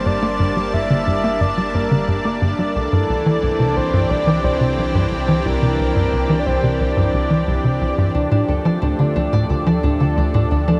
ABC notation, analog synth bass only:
X:1
M:4/4
L:1/16
Q:1/4=89
K:Cmix
V:1 name="Analog synth bass" clef=bass
G,, B, G,, G, G,, D, G,, B, G,, G, G,, D, G,, B, G,, G, | C,, G,, C,, E, C,, C, C,, G,, C,, E, C,, C, C,, G,, C,, E, | C,, C, C,, G,, C,, E, C,, C, C,, G,, C,, E, C,, C, C,, G,, | D,, A,, D,, F, D,, D, D,, A,, D,, F, D,, D, D,, A,, D,, F, |]